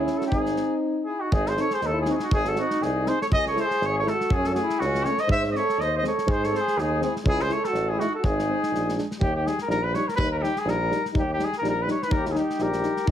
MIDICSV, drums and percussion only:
0, 0, Header, 1, 2, 480
1, 0, Start_track
1, 0, Tempo, 497512
1, 291, Time_signature, 2, 2, 24, 8
1, 6048, Tempo, 485437
1, 12813, End_track
2, 0, Start_track
2, 0, Title_t, "Drums"
2, 69, Note_on_c, 9, 38, 24
2, 166, Note_off_c, 9, 38, 0
2, 204, Note_on_c, 9, 38, 23
2, 300, Note_off_c, 9, 38, 0
2, 306, Note_on_c, 9, 36, 74
2, 403, Note_off_c, 9, 36, 0
2, 441, Note_on_c, 9, 38, 23
2, 538, Note_off_c, 9, 38, 0
2, 545, Note_on_c, 9, 38, 28
2, 641, Note_off_c, 9, 38, 0
2, 1275, Note_on_c, 9, 36, 100
2, 1371, Note_off_c, 9, 36, 0
2, 1410, Note_on_c, 9, 38, 29
2, 1507, Note_off_c, 9, 38, 0
2, 1515, Note_on_c, 9, 38, 28
2, 1612, Note_off_c, 9, 38, 0
2, 1644, Note_on_c, 9, 38, 27
2, 1741, Note_off_c, 9, 38, 0
2, 1750, Note_on_c, 9, 38, 27
2, 1847, Note_off_c, 9, 38, 0
2, 1982, Note_on_c, 9, 38, 32
2, 2079, Note_off_c, 9, 38, 0
2, 2119, Note_on_c, 9, 38, 29
2, 2215, Note_off_c, 9, 38, 0
2, 2232, Note_on_c, 9, 36, 99
2, 2329, Note_off_c, 9, 36, 0
2, 2360, Note_on_c, 9, 38, 27
2, 2456, Note_off_c, 9, 38, 0
2, 2468, Note_on_c, 9, 38, 33
2, 2565, Note_off_c, 9, 38, 0
2, 2609, Note_on_c, 9, 38, 27
2, 2705, Note_off_c, 9, 38, 0
2, 2725, Note_on_c, 9, 38, 25
2, 2822, Note_off_c, 9, 38, 0
2, 2955, Note_on_c, 9, 38, 29
2, 3051, Note_off_c, 9, 38, 0
2, 3103, Note_on_c, 9, 38, 32
2, 3200, Note_off_c, 9, 38, 0
2, 3200, Note_on_c, 9, 36, 97
2, 3297, Note_off_c, 9, 36, 0
2, 3337, Note_on_c, 9, 38, 27
2, 3433, Note_off_c, 9, 38, 0
2, 3442, Note_on_c, 9, 38, 33
2, 3539, Note_off_c, 9, 38, 0
2, 3574, Note_on_c, 9, 38, 22
2, 3671, Note_off_c, 9, 38, 0
2, 3680, Note_on_c, 9, 38, 25
2, 3776, Note_off_c, 9, 38, 0
2, 3928, Note_on_c, 9, 38, 27
2, 4025, Note_off_c, 9, 38, 0
2, 4057, Note_on_c, 9, 38, 31
2, 4152, Note_on_c, 9, 36, 99
2, 4154, Note_off_c, 9, 38, 0
2, 4249, Note_off_c, 9, 36, 0
2, 4285, Note_on_c, 9, 38, 28
2, 4382, Note_off_c, 9, 38, 0
2, 4393, Note_on_c, 9, 38, 28
2, 4489, Note_off_c, 9, 38, 0
2, 4532, Note_on_c, 9, 38, 25
2, 4628, Note_off_c, 9, 38, 0
2, 4643, Note_on_c, 9, 38, 28
2, 4739, Note_off_c, 9, 38, 0
2, 4772, Note_on_c, 9, 38, 29
2, 4869, Note_off_c, 9, 38, 0
2, 4872, Note_on_c, 9, 38, 26
2, 4968, Note_off_c, 9, 38, 0
2, 4994, Note_on_c, 9, 38, 25
2, 5091, Note_off_c, 9, 38, 0
2, 5106, Note_on_c, 9, 36, 84
2, 5202, Note_off_c, 9, 36, 0
2, 5243, Note_on_c, 9, 38, 28
2, 5340, Note_off_c, 9, 38, 0
2, 5356, Note_on_c, 9, 38, 22
2, 5452, Note_off_c, 9, 38, 0
2, 5491, Note_on_c, 9, 38, 21
2, 5588, Note_off_c, 9, 38, 0
2, 5600, Note_on_c, 9, 38, 23
2, 5697, Note_off_c, 9, 38, 0
2, 5832, Note_on_c, 9, 38, 28
2, 5928, Note_off_c, 9, 38, 0
2, 5964, Note_on_c, 9, 38, 26
2, 6060, Note_off_c, 9, 38, 0
2, 6060, Note_on_c, 9, 36, 97
2, 6159, Note_off_c, 9, 36, 0
2, 6213, Note_on_c, 9, 38, 26
2, 6312, Note_off_c, 9, 38, 0
2, 6327, Note_on_c, 9, 38, 32
2, 6426, Note_off_c, 9, 38, 0
2, 6450, Note_on_c, 9, 38, 26
2, 6549, Note_off_c, 9, 38, 0
2, 6558, Note_on_c, 9, 38, 25
2, 6657, Note_off_c, 9, 38, 0
2, 6790, Note_on_c, 9, 38, 29
2, 6889, Note_off_c, 9, 38, 0
2, 6931, Note_on_c, 9, 38, 34
2, 7025, Note_on_c, 9, 36, 95
2, 7030, Note_off_c, 9, 38, 0
2, 7124, Note_off_c, 9, 36, 0
2, 7161, Note_on_c, 9, 38, 29
2, 7259, Note_off_c, 9, 38, 0
2, 7259, Note_on_c, 9, 38, 26
2, 7358, Note_off_c, 9, 38, 0
2, 7406, Note_on_c, 9, 38, 28
2, 7505, Note_off_c, 9, 38, 0
2, 7508, Note_on_c, 9, 38, 30
2, 7607, Note_off_c, 9, 38, 0
2, 7763, Note_on_c, 9, 38, 26
2, 7862, Note_off_c, 9, 38, 0
2, 7995, Note_on_c, 9, 36, 82
2, 8094, Note_off_c, 9, 36, 0
2, 8146, Note_on_c, 9, 38, 22
2, 8245, Note_off_c, 9, 38, 0
2, 8384, Note_on_c, 9, 38, 28
2, 8483, Note_off_c, 9, 38, 0
2, 8501, Note_on_c, 9, 38, 26
2, 8600, Note_off_c, 9, 38, 0
2, 8638, Note_on_c, 9, 38, 29
2, 8733, Note_off_c, 9, 38, 0
2, 8733, Note_on_c, 9, 38, 26
2, 8832, Note_off_c, 9, 38, 0
2, 8859, Note_on_c, 9, 38, 31
2, 8958, Note_off_c, 9, 38, 0
2, 8959, Note_on_c, 9, 36, 81
2, 9058, Note_off_c, 9, 36, 0
2, 9212, Note_on_c, 9, 38, 31
2, 9311, Note_off_c, 9, 38, 0
2, 9326, Note_on_c, 9, 38, 29
2, 9425, Note_off_c, 9, 38, 0
2, 9446, Note_on_c, 9, 38, 27
2, 9545, Note_off_c, 9, 38, 0
2, 9680, Note_on_c, 9, 38, 33
2, 9779, Note_off_c, 9, 38, 0
2, 9823, Note_on_c, 9, 38, 30
2, 9918, Note_on_c, 9, 36, 99
2, 9922, Note_off_c, 9, 38, 0
2, 10017, Note_off_c, 9, 36, 0
2, 10170, Note_on_c, 9, 38, 28
2, 10269, Note_off_c, 9, 38, 0
2, 10293, Note_on_c, 9, 38, 29
2, 10392, Note_off_c, 9, 38, 0
2, 10408, Note_on_c, 9, 38, 25
2, 10507, Note_off_c, 9, 38, 0
2, 10645, Note_on_c, 9, 38, 28
2, 10744, Note_off_c, 9, 38, 0
2, 10779, Note_on_c, 9, 38, 26
2, 10875, Note_on_c, 9, 36, 94
2, 10878, Note_off_c, 9, 38, 0
2, 10974, Note_off_c, 9, 36, 0
2, 11115, Note_on_c, 9, 38, 28
2, 11214, Note_off_c, 9, 38, 0
2, 11247, Note_on_c, 9, 38, 22
2, 11346, Note_off_c, 9, 38, 0
2, 11361, Note_on_c, 9, 38, 25
2, 11460, Note_off_c, 9, 38, 0
2, 11597, Note_on_c, 9, 38, 25
2, 11696, Note_off_c, 9, 38, 0
2, 11738, Note_on_c, 9, 38, 30
2, 11827, Note_on_c, 9, 36, 105
2, 11837, Note_off_c, 9, 38, 0
2, 11926, Note_off_c, 9, 36, 0
2, 11966, Note_on_c, 9, 38, 30
2, 12065, Note_off_c, 9, 38, 0
2, 12066, Note_on_c, 9, 38, 29
2, 12165, Note_off_c, 9, 38, 0
2, 12209, Note_on_c, 9, 38, 26
2, 12296, Note_off_c, 9, 38, 0
2, 12296, Note_on_c, 9, 38, 24
2, 12395, Note_off_c, 9, 38, 0
2, 12433, Note_on_c, 9, 38, 25
2, 12532, Note_off_c, 9, 38, 0
2, 12536, Note_on_c, 9, 38, 23
2, 12635, Note_off_c, 9, 38, 0
2, 12670, Note_on_c, 9, 38, 25
2, 12769, Note_off_c, 9, 38, 0
2, 12778, Note_on_c, 9, 36, 89
2, 12813, Note_off_c, 9, 36, 0
2, 12813, End_track
0, 0, End_of_file